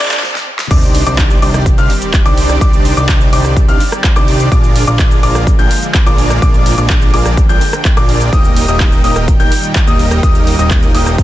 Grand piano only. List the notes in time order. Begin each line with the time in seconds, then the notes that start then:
0.71 D6
1.06 D6
1.42 D6
1.78 F6
2.26 D6
2.61 D6
2.97 D6
3.33 D6
3.68 F6
4.16 D6
4.52 D6
4.87 D6
5.23 D6
5.59 G6
6.06 D6
6.42 D6
6.78 D6
7.14 D6
7.49 G6
7.97 D6
8.33 D#6
8.68 D#6
9.04 D#6
9.40 G6
9.87 D#6
10.23 D#6
10.59 D#6
10.95 D#6